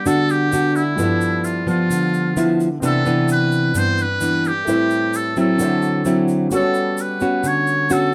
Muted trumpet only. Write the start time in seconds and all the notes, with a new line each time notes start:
0.07 A4
0.31 G4
0.76 E4
1.45 F4
1.69 F4
2.86 A4
3.32 B4
3.78 C5
4.02 B4
4.47 G4
5.16 A4
5.40 A4
6.55 A4
7.01 B4
7.47 C#5
7.93 A4